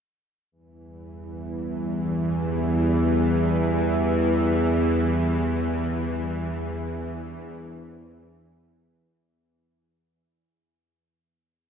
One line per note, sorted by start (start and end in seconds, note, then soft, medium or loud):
0.52 9.36 E2 medium
0.52 9.36 E3 medium
0.52 9.25 G3 medium
1.50 6.63 E4 medium
1.91 9.25 E5 medium
2.48 4.88 B4 medium
6.03 9.25 D4 medium
6.85 9.25 C5 medium